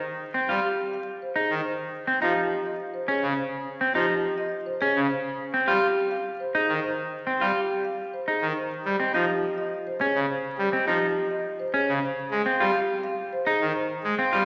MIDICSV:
0, 0, Header, 1, 4, 480
1, 0, Start_track
1, 0, Key_signature, -4, "major"
1, 0, Tempo, 576923
1, 43, Time_signature, 3, 2, 24, 8
1, 12022, End_track
2, 0, Start_track
2, 0, Title_t, "Marimba"
2, 0, Program_c, 0, 12
2, 409, Note_on_c, 0, 67, 60
2, 561, Note_off_c, 0, 67, 0
2, 776, Note_on_c, 0, 77, 52
2, 924, Note_off_c, 0, 77, 0
2, 1016, Note_on_c, 0, 72, 46
2, 1130, Note_on_c, 0, 68, 57
2, 1164, Note_off_c, 0, 72, 0
2, 1282, Note_off_c, 0, 68, 0
2, 1372, Note_on_c, 0, 72, 42
2, 1522, Note_off_c, 0, 72, 0
2, 1855, Note_on_c, 0, 67, 60
2, 2003, Note_off_c, 0, 67, 0
2, 2209, Note_on_c, 0, 75, 57
2, 2361, Note_off_c, 0, 75, 0
2, 2443, Note_on_c, 0, 72, 46
2, 2569, Note_on_c, 0, 68, 59
2, 2599, Note_off_c, 0, 72, 0
2, 2721, Note_off_c, 0, 68, 0
2, 2805, Note_on_c, 0, 72, 43
2, 2960, Note_off_c, 0, 72, 0
2, 3280, Note_on_c, 0, 67, 70
2, 3438, Note_off_c, 0, 67, 0
2, 3641, Note_on_c, 0, 75, 70
2, 3798, Note_off_c, 0, 75, 0
2, 3879, Note_on_c, 0, 72, 54
2, 3999, Note_on_c, 0, 68, 74
2, 4038, Note_off_c, 0, 72, 0
2, 4158, Note_off_c, 0, 68, 0
2, 4241, Note_on_c, 0, 72, 55
2, 4398, Note_off_c, 0, 72, 0
2, 4721, Note_on_c, 0, 67, 72
2, 4879, Note_off_c, 0, 67, 0
2, 5084, Note_on_c, 0, 77, 69
2, 5239, Note_off_c, 0, 77, 0
2, 5326, Note_on_c, 0, 72, 52
2, 5449, Note_on_c, 0, 68, 69
2, 5480, Note_off_c, 0, 72, 0
2, 5601, Note_off_c, 0, 68, 0
2, 5690, Note_on_c, 0, 72, 50
2, 5842, Note_off_c, 0, 72, 0
2, 6168, Note_on_c, 0, 67, 65
2, 6321, Note_off_c, 0, 67, 0
2, 6526, Note_on_c, 0, 77, 55
2, 6680, Note_off_c, 0, 77, 0
2, 6768, Note_on_c, 0, 72, 43
2, 6887, Note_on_c, 0, 68, 57
2, 6921, Note_off_c, 0, 72, 0
2, 7041, Note_off_c, 0, 68, 0
2, 7132, Note_on_c, 0, 72, 40
2, 7282, Note_off_c, 0, 72, 0
2, 7484, Note_on_c, 0, 75, 50
2, 7604, Note_on_c, 0, 67, 65
2, 7640, Note_off_c, 0, 75, 0
2, 7760, Note_off_c, 0, 67, 0
2, 7969, Note_on_c, 0, 75, 63
2, 8121, Note_off_c, 0, 75, 0
2, 8209, Note_on_c, 0, 72, 47
2, 8331, Note_on_c, 0, 68, 63
2, 8361, Note_off_c, 0, 72, 0
2, 8482, Note_off_c, 0, 68, 0
2, 8572, Note_on_c, 0, 72, 46
2, 8723, Note_off_c, 0, 72, 0
2, 8927, Note_on_c, 0, 75, 50
2, 9047, Note_on_c, 0, 67, 68
2, 9081, Note_off_c, 0, 75, 0
2, 9201, Note_off_c, 0, 67, 0
2, 9407, Note_on_c, 0, 75, 66
2, 9561, Note_off_c, 0, 75, 0
2, 9647, Note_on_c, 0, 72, 52
2, 9770, Note_on_c, 0, 68, 63
2, 9800, Note_off_c, 0, 72, 0
2, 9922, Note_off_c, 0, 68, 0
2, 10007, Note_on_c, 0, 72, 49
2, 10161, Note_off_c, 0, 72, 0
2, 10360, Note_on_c, 0, 77, 56
2, 10485, Note_on_c, 0, 67, 68
2, 10518, Note_off_c, 0, 77, 0
2, 10640, Note_off_c, 0, 67, 0
2, 10845, Note_on_c, 0, 77, 70
2, 11000, Note_off_c, 0, 77, 0
2, 11088, Note_on_c, 0, 72, 56
2, 11201, Note_on_c, 0, 68, 73
2, 11241, Note_off_c, 0, 72, 0
2, 11358, Note_off_c, 0, 68, 0
2, 11445, Note_on_c, 0, 72, 54
2, 11600, Note_off_c, 0, 72, 0
2, 11803, Note_on_c, 0, 77, 58
2, 11919, Note_on_c, 0, 67, 77
2, 11959, Note_off_c, 0, 77, 0
2, 12022, Note_off_c, 0, 67, 0
2, 12022, End_track
3, 0, Start_track
3, 0, Title_t, "Clean electric guitar"
3, 0, Program_c, 1, 27
3, 286, Note_on_c, 1, 60, 45
3, 408, Note_on_c, 1, 65, 55
3, 440, Note_off_c, 1, 60, 0
3, 561, Note_off_c, 1, 65, 0
3, 1128, Note_on_c, 1, 63, 53
3, 1281, Note_off_c, 1, 63, 0
3, 1726, Note_on_c, 1, 60, 51
3, 1841, Note_off_c, 1, 60, 0
3, 1845, Note_on_c, 1, 63, 56
3, 2000, Note_off_c, 1, 63, 0
3, 2564, Note_on_c, 1, 61, 61
3, 2719, Note_off_c, 1, 61, 0
3, 3169, Note_on_c, 1, 60, 53
3, 3283, Note_off_c, 1, 60, 0
3, 3287, Note_on_c, 1, 63, 62
3, 3441, Note_off_c, 1, 63, 0
3, 4007, Note_on_c, 1, 61, 72
3, 4161, Note_off_c, 1, 61, 0
3, 4608, Note_on_c, 1, 60, 62
3, 4724, Note_on_c, 1, 65, 74
3, 4761, Note_off_c, 1, 60, 0
3, 4879, Note_off_c, 1, 65, 0
3, 5447, Note_on_c, 1, 63, 69
3, 5601, Note_off_c, 1, 63, 0
3, 6047, Note_on_c, 1, 60, 47
3, 6168, Note_on_c, 1, 65, 57
3, 6201, Note_off_c, 1, 60, 0
3, 6321, Note_off_c, 1, 65, 0
3, 6886, Note_on_c, 1, 63, 52
3, 7040, Note_off_c, 1, 63, 0
3, 7485, Note_on_c, 1, 60, 50
3, 7605, Note_off_c, 1, 60, 0
3, 7608, Note_on_c, 1, 63, 59
3, 7761, Note_off_c, 1, 63, 0
3, 8327, Note_on_c, 1, 61, 66
3, 8481, Note_off_c, 1, 61, 0
3, 8928, Note_on_c, 1, 60, 54
3, 9046, Note_off_c, 1, 60, 0
3, 9050, Note_on_c, 1, 63, 63
3, 9202, Note_off_c, 1, 63, 0
3, 9765, Note_on_c, 1, 61, 65
3, 9920, Note_off_c, 1, 61, 0
3, 10366, Note_on_c, 1, 60, 59
3, 10487, Note_on_c, 1, 65, 67
3, 10520, Note_off_c, 1, 60, 0
3, 10641, Note_off_c, 1, 65, 0
3, 11204, Note_on_c, 1, 63, 73
3, 11359, Note_off_c, 1, 63, 0
3, 11803, Note_on_c, 1, 60, 64
3, 11921, Note_on_c, 1, 65, 74
3, 11959, Note_off_c, 1, 60, 0
3, 12022, Note_off_c, 1, 65, 0
3, 12022, End_track
4, 0, Start_track
4, 0, Title_t, "Pipe organ"
4, 0, Program_c, 2, 19
4, 408, Note_on_c, 2, 55, 52
4, 496, Note_off_c, 2, 55, 0
4, 1246, Note_on_c, 2, 51, 50
4, 1335, Note_off_c, 2, 51, 0
4, 1843, Note_on_c, 2, 53, 55
4, 1933, Note_off_c, 2, 53, 0
4, 2677, Note_on_c, 2, 49, 51
4, 2770, Note_off_c, 2, 49, 0
4, 3281, Note_on_c, 2, 53, 60
4, 3372, Note_off_c, 2, 53, 0
4, 4122, Note_on_c, 2, 49, 59
4, 4212, Note_off_c, 2, 49, 0
4, 4721, Note_on_c, 2, 55, 70
4, 4812, Note_off_c, 2, 55, 0
4, 5558, Note_on_c, 2, 51, 50
4, 5650, Note_off_c, 2, 51, 0
4, 6162, Note_on_c, 2, 55, 55
4, 6252, Note_off_c, 2, 55, 0
4, 6999, Note_on_c, 2, 51, 45
4, 7091, Note_off_c, 2, 51, 0
4, 7365, Note_on_c, 2, 55, 51
4, 7455, Note_off_c, 2, 55, 0
4, 7605, Note_on_c, 2, 53, 58
4, 7694, Note_off_c, 2, 53, 0
4, 8439, Note_on_c, 2, 49, 54
4, 8530, Note_off_c, 2, 49, 0
4, 8803, Note_on_c, 2, 55, 49
4, 8893, Note_off_c, 2, 55, 0
4, 9042, Note_on_c, 2, 53, 59
4, 9133, Note_off_c, 2, 53, 0
4, 9885, Note_on_c, 2, 49, 52
4, 9974, Note_off_c, 2, 49, 0
4, 10241, Note_on_c, 2, 56, 53
4, 10332, Note_off_c, 2, 56, 0
4, 10480, Note_on_c, 2, 55, 70
4, 10571, Note_off_c, 2, 55, 0
4, 11321, Note_on_c, 2, 51, 58
4, 11412, Note_off_c, 2, 51, 0
4, 11681, Note_on_c, 2, 56, 56
4, 11772, Note_off_c, 2, 56, 0
4, 11923, Note_on_c, 2, 55, 75
4, 12013, Note_off_c, 2, 55, 0
4, 12022, End_track
0, 0, End_of_file